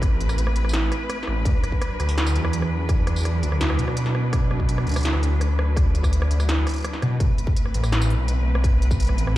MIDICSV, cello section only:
0, 0, Header, 1, 2, 480
1, 0, Start_track
1, 0, Tempo, 359281
1, 27, Time_signature, 4, 2, 24, 8
1, 12530, End_track
2, 0, Start_track
2, 0, Title_t, "Cello section"
2, 0, Program_c, 0, 48
2, 0, Note_on_c, 0, 57, 82
2, 0, Note_on_c, 0, 60, 75
2, 0, Note_on_c, 0, 71, 91
2, 1891, Note_off_c, 0, 60, 0
2, 1893, Note_off_c, 0, 57, 0
2, 1944, Note_on_c, 0, 62, 79
2, 1953, Note_on_c, 0, 54, 85
2, 9571, Note_off_c, 0, 71, 0
2, 9572, Note_off_c, 0, 62, 0
2, 9577, Note_off_c, 0, 54, 0
2, 9623, Note_on_c, 0, 60, 79
2, 9627, Note_on_c, 0, 71, 92
2, 9628, Note_on_c, 0, 57, 81
2, 12530, Note_off_c, 0, 57, 0
2, 12530, Note_off_c, 0, 60, 0
2, 12530, Note_off_c, 0, 71, 0
2, 12530, End_track
0, 0, End_of_file